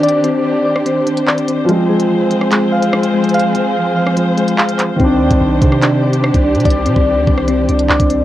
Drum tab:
HH |xx--x-----------x---x-x---x-x---|x-----x-----x---x-----x---x---xx|xx--x-----------x---x-x---x-x---|x-----x-----x---x-----x---x---xx|
CP |------------------------x-------|----------------x---------------|------------------------x---x---|----------------x---------------|
SD |--------------r-----------------|--------------r---------r-------|--------------r-----------------|--------------r---------r-------|
BD |--------------------------------|--------------------------------|--------------------------------|o-----o-----o-------------o-----|

HH |xx--x-----------x---x-x---x-x---|
CP |------------------------x-------|
SD |--------------r-----------------|
BD |o-----o-----o-------------o-----|